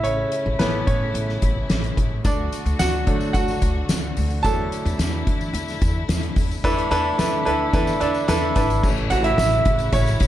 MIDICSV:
0, 0, Header, 1, 5, 480
1, 0, Start_track
1, 0, Key_signature, 3, "major"
1, 0, Tempo, 549451
1, 38, Time_signature, 4, 2, 24, 8
1, 8972, End_track
2, 0, Start_track
2, 0, Title_t, "Grand piano"
2, 0, Program_c, 0, 0
2, 0, Control_c, 0, 64, 127
2, 0, Note_on_c, 0, 64, 64
2, 0, Note_on_c, 0, 76, 77
2, 31, Note_on_c, 0, 73, 83
2, 49, Note_on_c, 0, 61, 67
2, 490, Note_off_c, 0, 61, 0
2, 515, Note_on_c, 0, 52, 49
2, 516, Note_on_c, 0, 71, 76
2, 521, Note_on_c, 0, 57, 46
2, 526, Note_on_c, 0, 61, 53
2, 528, Note_on_c, 0, 59, 61
2, 529, Note_off_c, 0, 73, 0
2, 570, Note_off_c, 0, 71, 0
2, 581, Note_off_c, 0, 59, 0
2, 757, Note_off_c, 0, 61, 0
2, 760, Note_on_c, 0, 73, 78
2, 770, Note_on_c, 0, 61, 60
2, 1202, Note_off_c, 0, 52, 0
2, 1205, Note_off_c, 0, 57, 0
2, 1684, Note_off_c, 0, 73, 0
2, 1690, Note_off_c, 0, 61, 0
2, 1964, Note_on_c, 0, 74, 81
2, 1969, Control_c, 0, 64, 0
2, 1970, Note_on_c, 0, 62, 65
2, 1973, Note_off_c, 0, 64, 0
2, 1973, Note_off_c, 0, 76, 0
2, 2143, Control_c, 0, 64, 127
2, 2411, Note_off_c, 0, 62, 0
2, 2440, Note_on_c, 0, 78, 93
2, 2451, Note_on_c, 0, 66, 72
2, 2456, Note_off_c, 0, 74, 0
2, 2677, Note_on_c, 0, 54, 51
2, 2680, Note_on_c, 0, 57, 50
2, 2685, Note_on_c, 0, 62, 61
2, 2892, Note_off_c, 0, 66, 0
2, 2898, Note_off_c, 0, 78, 0
2, 2912, Note_on_c, 0, 78, 87
2, 2929, Note_on_c, 0, 66, 67
2, 2997, Note_off_c, 0, 54, 0
2, 2999, Note_off_c, 0, 57, 0
2, 3001, Note_off_c, 0, 62, 0
2, 3600, Note_off_c, 0, 78, 0
2, 3609, Note_off_c, 0, 66, 0
2, 3868, Note_on_c, 0, 81, 104
2, 3878, Note_on_c, 0, 54, 53
2, 3885, Note_on_c, 0, 57, 50
2, 3886, Note_on_c, 0, 62, 62
2, 3890, Control_c, 0, 64, 0
2, 3892, Note_on_c, 0, 69, 77
2, 4036, Control_c, 0, 64, 127
2, 4563, Note_off_c, 0, 54, 0
2, 4567, Note_off_c, 0, 57, 0
2, 4567, Note_off_c, 0, 62, 0
2, 5278, Note_off_c, 0, 81, 0
2, 5290, Note_off_c, 0, 69, 0
2, 5801, Note_on_c, 0, 62, 106
2, 5803, Note_on_c, 0, 52, 71
2, 5804, Note_on_c, 0, 64, 94
2, 5804, Note_on_c, 0, 69, 97
2, 5806, Note_on_c, 0, 71, 117
2, 5811, Control_c, 0, 64, 0
2, 5953, Control_c, 0, 64, 127
2, 6012, Note_off_c, 0, 62, 0
2, 6014, Note_off_c, 0, 64, 0
2, 6014, Note_off_c, 0, 69, 0
2, 6015, Note_off_c, 0, 71, 0
2, 6036, Note_on_c, 0, 62, 108
2, 6038, Note_on_c, 0, 64, 98
2, 6041, Note_on_c, 0, 69, 94
2, 6041, Note_on_c, 0, 71, 114
2, 6250, Note_off_c, 0, 62, 0
2, 6251, Note_off_c, 0, 64, 0
2, 6252, Note_off_c, 0, 69, 0
2, 6253, Note_off_c, 0, 71, 0
2, 6276, Note_on_c, 0, 62, 85
2, 6282, Note_on_c, 0, 64, 73
2, 6283, Note_on_c, 0, 69, 76
2, 6285, Note_on_c, 0, 71, 91
2, 6485, Note_off_c, 0, 52, 0
2, 6490, Note_off_c, 0, 62, 0
2, 6493, Note_off_c, 0, 64, 0
2, 6493, Note_off_c, 0, 69, 0
2, 6494, Note_off_c, 0, 71, 0
2, 6510, Note_on_c, 0, 62, 88
2, 6513, Note_on_c, 0, 64, 77
2, 6516, Note_on_c, 0, 69, 77
2, 6519, Note_on_c, 0, 71, 94
2, 6727, Note_off_c, 0, 62, 0
2, 6728, Note_off_c, 0, 64, 0
2, 6730, Note_off_c, 0, 69, 0
2, 6731, Note_off_c, 0, 71, 0
2, 6755, Note_on_c, 0, 62, 88
2, 6762, Note_on_c, 0, 64, 81
2, 6764, Note_on_c, 0, 69, 81
2, 6766, Note_on_c, 0, 71, 96
2, 6969, Note_off_c, 0, 62, 0
2, 6973, Note_off_c, 0, 64, 0
2, 6974, Note_off_c, 0, 69, 0
2, 6975, Note_off_c, 0, 71, 0
2, 6992, Note_on_c, 0, 62, 85
2, 6996, Note_on_c, 0, 64, 77
2, 6999, Note_on_c, 0, 69, 78
2, 7001, Note_on_c, 0, 74, 92
2, 7208, Note_off_c, 0, 62, 0
2, 7210, Note_off_c, 0, 64, 0
2, 7211, Note_off_c, 0, 69, 0
2, 7212, Note_off_c, 0, 74, 0
2, 7233, Note_on_c, 0, 62, 102
2, 7235, Note_on_c, 0, 64, 88
2, 7240, Note_on_c, 0, 69, 95
2, 7241, Note_on_c, 0, 71, 113
2, 7448, Note_off_c, 0, 62, 0
2, 7449, Note_off_c, 0, 64, 0
2, 7452, Note_off_c, 0, 69, 0
2, 7452, Note_off_c, 0, 71, 0
2, 7477, Note_on_c, 0, 62, 79
2, 7478, Note_on_c, 0, 64, 75
2, 7483, Note_on_c, 0, 69, 71
2, 7483, Note_on_c, 0, 71, 89
2, 7690, Note_off_c, 0, 62, 0
2, 7690, Note_off_c, 0, 64, 0
2, 7693, Note_off_c, 0, 69, 0
2, 7693, Note_off_c, 0, 71, 0
2, 7707, Note_on_c, 0, 52, 57
2, 7716, Note_on_c, 0, 57, 53
2, 7721, Note_on_c, 0, 61, 64
2, 7730, Control_c, 0, 64, 0
2, 7880, Control_c, 0, 64, 127
2, 7951, Note_on_c, 0, 78, 110
2, 7966, Note_on_c, 0, 66, 88
2, 8031, Note_off_c, 0, 52, 0
2, 8035, Note_off_c, 0, 57, 0
2, 8038, Note_off_c, 0, 61, 0
2, 8065, Note_off_c, 0, 78, 0
2, 8072, Note_on_c, 0, 76, 100
2, 8073, Note_off_c, 0, 66, 0
2, 8088, Note_on_c, 0, 64, 77
2, 8181, Note_off_c, 0, 76, 0
2, 8194, Note_off_c, 0, 64, 0
2, 8194, Note_on_c, 0, 76, 104
2, 8210, Note_on_c, 0, 64, 81
2, 8649, Note_off_c, 0, 64, 0
2, 8676, Note_on_c, 0, 73, 101
2, 8689, Note_off_c, 0, 76, 0
2, 8693, Note_on_c, 0, 61, 80
2, 8972, Note_off_c, 0, 61, 0
2, 8972, Note_off_c, 0, 73, 0
2, 8972, End_track
3, 0, Start_track
3, 0, Title_t, "String section"
3, 0, Program_c, 1, 48
3, 0, Note_on_c, 1, 49, 63
3, 0, Note_on_c, 1, 57, 57
3, 0, Note_on_c, 1, 64, 70
3, 1922, Note_off_c, 1, 49, 0
3, 1939, Note_off_c, 1, 64, 0
3, 1977, Note_on_c, 1, 50, 63
3, 1978, Note_on_c, 1, 66, 74
3, 3870, Note_off_c, 1, 66, 0
3, 3882, Note_on_c, 1, 64, 74
3, 5760, Note_off_c, 1, 57, 0
3, 5772, Note_off_c, 1, 50, 0
3, 5781, Note_off_c, 1, 64, 0
3, 5797, Note_on_c, 1, 57, 62
3, 5799, Note_on_c, 1, 50, 71
3, 5799, Note_on_c, 1, 64, 74
3, 7697, Note_off_c, 1, 57, 0
3, 7698, Note_off_c, 1, 50, 0
3, 7698, Note_off_c, 1, 64, 0
3, 7710, Note_on_c, 1, 49, 74
3, 7714, Note_on_c, 1, 64, 87
3, 8972, Note_off_c, 1, 49, 0
3, 8972, Note_off_c, 1, 64, 0
3, 8972, End_track
4, 0, Start_track
4, 0, Title_t, "Upright bass"
4, 0, Program_c, 2, 32
4, 0, Note_on_c, 2, 33, 86
4, 192, Note_off_c, 2, 33, 0
4, 400, Note_on_c, 2, 33, 80
4, 498, Note_off_c, 2, 33, 0
4, 522, Note_on_c, 2, 33, 73
4, 717, Note_off_c, 2, 33, 0
4, 763, Note_on_c, 2, 45, 84
4, 958, Note_off_c, 2, 45, 0
4, 997, Note_on_c, 2, 33, 85
4, 1194, Note_off_c, 2, 33, 0
4, 1245, Note_on_c, 2, 33, 81
4, 1439, Note_off_c, 2, 33, 0
4, 1482, Note_on_c, 2, 33, 83
4, 1678, Note_off_c, 2, 33, 0
4, 1723, Note_on_c, 2, 33, 90
4, 1918, Note_off_c, 2, 33, 0
4, 1963, Note_on_c, 2, 38, 101
4, 2158, Note_off_c, 2, 38, 0
4, 2319, Note_on_c, 2, 38, 86
4, 2418, Note_off_c, 2, 38, 0
4, 2442, Note_on_c, 2, 38, 80
4, 2637, Note_off_c, 2, 38, 0
4, 2683, Note_on_c, 2, 50, 93
4, 2878, Note_off_c, 2, 50, 0
4, 2917, Note_on_c, 2, 38, 88
4, 3115, Note_off_c, 2, 38, 0
4, 3162, Note_on_c, 2, 38, 86
4, 3357, Note_off_c, 2, 38, 0
4, 3402, Note_on_c, 2, 38, 90
4, 3598, Note_off_c, 2, 38, 0
4, 3645, Note_on_c, 2, 38, 83
4, 3839, Note_off_c, 2, 38, 0
4, 3882, Note_on_c, 2, 40, 98
4, 4078, Note_off_c, 2, 40, 0
4, 4240, Note_on_c, 2, 40, 88
4, 4338, Note_off_c, 2, 40, 0
4, 4358, Note_on_c, 2, 40, 97
4, 4555, Note_off_c, 2, 40, 0
4, 4604, Note_on_c, 2, 52, 84
4, 4798, Note_off_c, 2, 52, 0
4, 4834, Note_on_c, 2, 40, 88
4, 5032, Note_off_c, 2, 40, 0
4, 5083, Note_on_c, 2, 40, 90
4, 5278, Note_off_c, 2, 40, 0
4, 5316, Note_on_c, 2, 40, 89
4, 5514, Note_off_c, 2, 40, 0
4, 5560, Note_on_c, 2, 40, 84
4, 5756, Note_off_c, 2, 40, 0
4, 5799, Note_on_c, 2, 40, 101
4, 5996, Note_off_c, 2, 40, 0
4, 6037, Note_on_c, 2, 40, 91
4, 6234, Note_off_c, 2, 40, 0
4, 6278, Note_on_c, 2, 40, 88
4, 6475, Note_off_c, 2, 40, 0
4, 6518, Note_on_c, 2, 38, 75
4, 6715, Note_off_c, 2, 38, 0
4, 6757, Note_on_c, 2, 40, 101
4, 6954, Note_off_c, 2, 40, 0
4, 6998, Note_on_c, 2, 40, 86
4, 7195, Note_off_c, 2, 40, 0
4, 7238, Note_on_c, 2, 40, 92
4, 7434, Note_off_c, 2, 40, 0
4, 7477, Note_on_c, 2, 32, 79
4, 7674, Note_off_c, 2, 32, 0
4, 7719, Note_on_c, 2, 33, 104
4, 7915, Note_off_c, 2, 33, 0
4, 7954, Note_on_c, 2, 33, 98
4, 8152, Note_off_c, 2, 33, 0
4, 8194, Note_on_c, 2, 33, 101
4, 8391, Note_off_c, 2, 33, 0
4, 8437, Note_on_c, 2, 33, 92
4, 8633, Note_off_c, 2, 33, 0
4, 8669, Note_on_c, 2, 33, 109
4, 8869, Note_off_c, 2, 33, 0
4, 8916, Note_on_c, 2, 33, 98
4, 8972, Note_off_c, 2, 33, 0
4, 8972, End_track
5, 0, Start_track
5, 0, Title_t, "Drums"
5, 38, Note_on_c, 9, 42, 76
5, 126, Note_off_c, 9, 42, 0
5, 277, Note_on_c, 9, 42, 72
5, 364, Note_off_c, 9, 42, 0
5, 519, Note_on_c, 9, 42, 80
5, 520, Note_on_c, 9, 38, 94
5, 606, Note_off_c, 9, 42, 0
5, 607, Note_off_c, 9, 38, 0
5, 763, Note_on_c, 9, 36, 74
5, 763, Note_on_c, 9, 42, 55
5, 850, Note_off_c, 9, 36, 0
5, 851, Note_off_c, 9, 42, 0
5, 1004, Note_on_c, 9, 42, 80
5, 1091, Note_off_c, 9, 42, 0
5, 1125, Note_on_c, 9, 38, 29
5, 1212, Note_off_c, 9, 38, 0
5, 1241, Note_on_c, 9, 42, 67
5, 1243, Note_on_c, 9, 36, 81
5, 1328, Note_off_c, 9, 42, 0
5, 1331, Note_off_c, 9, 36, 0
5, 1481, Note_on_c, 9, 42, 80
5, 1484, Note_on_c, 9, 38, 109
5, 1569, Note_off_c, 9, 42, 0
5, 1571, Note_off_c, 9, 38, 0
5, 1606, Note_on_c, 9, 42, 48
5, 1693, Note_off_c, 9, 42, 0
5, 1724, Note_on_c, 9, 36, 86
5, 1726, Note_on_c, 9, 42, 67
5, 1811, Note_off_c, 9, 36, 0
5, 1814, Note_off_c, 9, 42, 0
5, 1962, Note_on_c, 9, 54, 51
5, 1963, Note_on_c, 9, 36, 90
5, 1965, Note_on_c, 9, 42, 76
5, 2049, Note_off_c, 9, 54, 0
5, 2051, Note_off_c, 9, 36, 0
5, 2052, Note_off_c, 9, 42, 0
5, 2205, Note_on_c, 9, 42, 73
5, 2206, Note_on_c, 9, 54, 45
5, 2293, Note_off_c, 9, 42, 0
5, 2294, Note_off_c, 9, 54, 0
5, 2325, Note_on_c, 9, 42, 47
5, 2327, Note_on_c, 9, 54, 31
5, 2412, Note_off_c, 9, 42, 0
5, 2414, Note_off_c, 9, 54, 0
5, 2441, Note_on_c, 9, 42, 90
5, 2441, Note_on_c, 9, 54, 81
5, 2442, Note_on_c, 9, 38, 95
5, 2528, Note_off_c, 9, 42, 0
5, 2528, Note_off_c, 9, 54, 0
5, 2529, Note_off_c, 9, 38, 0
5, 2681, Note_on_c, 9, 42, 61
5, 2683, Note_on_c, 9, 36, 76
5, 2769, Note_off_c, 9, 42, 0
5, 2771, Note_off_c, 9, 36, 0
5, 2800, Note_on_c, 9, 54, 35
5, 2887, Note_off_c, 9, 54, 0
5, 2919, Note_on_c, 9, 36, 87
5, 2919, Note_on_c, 9, 54, 46
5, 2923, Note_on_c, 9, 42, 76
5, 3006, Note_off_c, 9, 36, 0
5, 3007, Note_off_c, 9, 54, 0
5, 3010, Note_off_c, 9, 42, 0
5, 3040, Note_on_c, 9, 54, 44
5, 3045, Note_on_c, 9, 38, 30
5, 3128, Note_off_c, 9, 54, 0
5, 3132, Note_off_c, 9, 38, 0
5, 3160, Note_on_c, 9, 42, 67
5, 3162, Note_on_c, 9, 36, 81
5, 3163, Note_on_c, 9, 54, 44
5, 3248, Note_off_c, 9, 42, 0
5, 3250, Note_off_c, 9, 36, 0
5, 3251, Note_off_c, 9, 54, 0
5, 3397, Note_on_c, 9, 42, 79
5, 3400, Note_on_c, 9, 38, 102
5, 3400, Note_on_c, 9, 54, 84
5, 3484, Note_off_c, 9, 42, 0
5, 3487, Note_off_c, 9, 38, 0
5, 3487, Note_off_c, 9, 54, 0
5, 3640, Note_on_c, 9, 46, 66
5, 3640, Note_on_c, 9, 54, 43
5, 3727, Note_off_c, 9, 46, 0
5, 3728, Note_off_c, 9, 54, 0
5, 3761, Note_on_c, 9, 54, 32
5, 3848, Note_off_c, 9, 54, 0
5, 3882, Note_on_c, 9, 36, 86
5, 3883, Note_on_c, 9, 42, 80
5, 3883, Note_on_c, 9, 54, 50
5, 3969, Note_off_c, 9, 36, 0
5, 3970, Note_off_c, 9, 54, 0
5, 3971, Note_off_c, 9, 42, 0
5, 4125, Note_on_c, 9, 42, 72
5, 4125, Note_on_c, 9, 54, 47
5, 4212, Note_off_c, 9, 42, 0
5, 4213, Note_off_c, 9, 54, 0
5, 4247, Note_on_c, 9, 42, 49
5, 4252, Note_on_c, 9, 54, 34
5, 4334, Note_off_c, 9, 42, 0
5, 4340, Note_off_c, 9, 54, 0
5, 4362, Note_on_c, 9, 38, 100
5, 4362, Note_on_c, 9, 42, 89
5, 4369, Note_on_c, 9, 54, 84
5, 4449, Note_off_c, 9, 42, 0
5, 4450, Note_off_c, 9, 38, 0
5, 4457, Note_off_c, 9, 54, 0
5, 4603, Note_on_c, 9, 36, 80
5, 4603, Note_on_c, 9, 42, 64
5, 4691, Note_off_c, 9, 36, 0
5, 4691, Note_off_c, 9, 42, 0
5, 4724, Note_on_c, 9, 54, 34
5, 4812, Note_off_c, 9, 54, 0
5, 4842, Note_on_c, 9, 54, 43
5, 4844, Note_on_c, 9, 42, 80
5, 4929, Note_off_c, 9, 54, 0
5, 4931, Note_off_c, 9, 42, 0
5, 4965, Note_on_c, 9, 54, 43
5, 4968, Note_on_c, 9, 38, 31
5, 5052, Note_off_c, 9, 54, 0
5, 5056, Note_off_c, 9, 38, 0
5, 5080, Note_on_c, 9, 42, 73
5, 5082, Note_on_c, 9, 36, 81
5, 5089, Note_on_c, 9, 54, 44
5, 5168, Note_off_c, 9, 42, 0
5, 5170, Note_off_c, 9, 36, 0
5, 5176, Note_off_c, 9, 54, 0
5, 5319, Note_on_c, 9, 42, 81
5, 5321, Note_on_c, 9, 38, 105
5, 5330, Note_on_c, 9, 54, 83
5, 5406, Note_off_c, 9, 42, 0
5, 5409, Note_off_c, 9, 38, 0
5, 5417, Note_off_c, 9, 54, 0
5, 5442, Note_on_c, 9, 42, 50
5, 5530, Note_off_c, 9, 42, 0
5, 5557, Note_on_c, 9, 46, 68
5, 5559, Note_on_c, 9, 36, 86
5, 5572, Note_on_c, 9, 54, 44
5, 5644, Note_off_c, 9, 46, 0
5, 5647, Note_off_c, 9, 36, 0
5, 5659, Note_off_c, 9, 54, 0
5, 5691, Note_on_c, 9, 54, 32
5, 5779, Note_off_c, 9, 54, 0
5, 5801, Note_on_c, 9, 36, 95
5, 5802, Note_on_c, 9, 49, 79
5, 5810, Note_on_c, 9, 54, 50
5, 5888, Note_off_c, 9, 36, 0
5, 5889, Note_off_c, 9, 49, 0
5, 5898, Note_off_c, 9, 54, 0
5, 5925, Note_on_c, 9, 42, 54
5, 6013, Note_off_c, 9, 42, 0
5, 6040, Note_on_c, 9, 42, 77
5, 6050, Note_on_c, 9, 54, 45
5, 6127, Note_off_c, 9, 42, 0
5, 6138, Note_off_c, 9, 54, 0
5, 6280, Note_on_c, 9, 42, 93
5, 6281, Note_on_c, 9, 38, 107
5, 6286, Note_on_c, 9, 54, 79
5, 6367, Note_off_c, 9, 42, 0
5, 6368, Note_off_c, 9, 38, 0
5, 6373, Note_off_c, 9, 54, 0
5, 6521, Note_on_c, 9, 42, 62
5, 6609, Note_off_c, 9, 42, 0
5, 6757, Note_on_c, 9, 36, 93
5, 6757, Note_on_c, 9, 54, 44
5, 6760, Note_on_c, 9, 42, 79
5, 6844, Note_off_c, 9, 36, 0
5, 6844, Note_off_c, 9, 54, 0
5, 6847, Note_off_c, 9, 42, 0
5, 6877, Note_on_c, 9, 54, 46
5, 6882, Note_on_c, 9, 38, 32
5, 6964, Note_off_c, 9, 54, 0
5, 6969, Note_off_c, 9, 38, 0
5, 6996, Note_on_c, 9, 42, 71
5, 7002, Note_on_c, 9, 54, 46
5, 7083, Note_off_c, 9, 42, 0
5, 7089, Note_off_c, 9, 54, 0
5, 7115, Note_on_c, 9, 54, 29
5, 7203, Note_off_c, 9, 54, 0
5, 7235, Note_on_c, 9, 42, 83
5, 7238, Note_on_c, 9, 38, 111
5, 7244, Note_on_c, 9, 54, 92
5, 7322, Note_off_c, 9, 42, 0
5, 7325, Note_off_c, 9, 38, 0
5, 7331, Note_off_c, 9, 54, 0
5, 7474, Note_on_c, 9, 42, 68
5, 7477, Note_on_c, 9, 36, 92
5, 7485, Note_on_c, 9, 54, 43
5, 7561, Note_off_c, 9, 42, 0
5, 7565, Note_off_c, 9, 36, 0
5, 7572, Note_off_c, 9, 54, 0
5, 7601, Note_on_c, 9, 42, 51
5, 7605, Note_on_c, 9, 54, 34
5, 7688, Note_off_c, 9, 42, 0
5, 7692, Note_off_c, 9, 54, 0
5, 7717, Note_on_c, 9, 49, 93
5, 7718, Note_on_c, 9, 36, 101
5, 7721, Note_on_c, 9, 54, 57
5, 7805, Note_off_c, 9, 36, 0
5, 7805, Note_off_c, 9, 49, 0
5, 7808, Note_off_c, 9, 54, 0
5, 7840, Note_on_c, 9, 42, 35
5, 7927, Note_off_c, 9, 42, 0
5, 7953, Note_on_c, 9, 42, 86
5, 7963, Note_on_c, 9, 54, 50
5, 8040, Note_off_c, 9, 42, 0
5, 8051, Note_off_c, 9, 54, 0
5, 8072, Note_on_c, 9, 42, 56
5, 8160, Note_off_c, 9, 42, 0
5, 8193, Note_on_c, 9, 38, 115
5, 8205, Note_on_c, 9, 54, 91
5, 8281, Note_off_c, 9, 38, 0
5, 8292, Note_off_c, 9, 54, 0
5, 8314, Note_on_c, 9, 42, 35
5, 8402, Note_off_c, 9, 42, 0
5, 8432, Note_on_c, 9, 42, 69
5, 8437, Note_on_c, 9, 36, 96
5, 8520, Note_off_c, 9, 42, 0
5, 8524, Note_off_c, 9, 36, 0
5, 8548, Note_on_c, 9, 42, 43
5, 8561, Note_on_c, 9, 54, 38
5, 8636, Note_off_c, 9, 42, 0
5, 8649, Note_off_c, 9, 54, 0
5, 8671, Note_on_c, 9, 36, 102
5, 8671, Note_on_c, 9, 42, 89
5, 8683, Note_on_c, 9, 54, 53
5, 8758, Note_off_c, 9, 42, 0
5, 8759, Note_off_c, 9, 36, 0
5, 8770, Note_off_c, 9, 54, 0
5, 8789, Note_on_c, 9, 42, 37
5, 8793, Note_on_c, 9, 38, 34
5, 8801, Note_on_c, 9, 54, 46
5, 8877, Note_off_c, 9, 42, 0
5, 8880, Note_off_c, 9, 38, 0
5, 8888, Note_off_c, 9, 54, 0
5, 8909, Note_on_c, 9, 42, 81
5, 8916, Note_on_c, 9, 36, 96
5, 8932, Note_on_c, 9, 54, 51
5, 8972, Note_off_c, 9, 36, 0
5, 8972, Note_off_c, 9, 42, 0
5, 8972, Note_off_c, 9, 54, 0
5, 8972, End_track
0, 0, End_of_file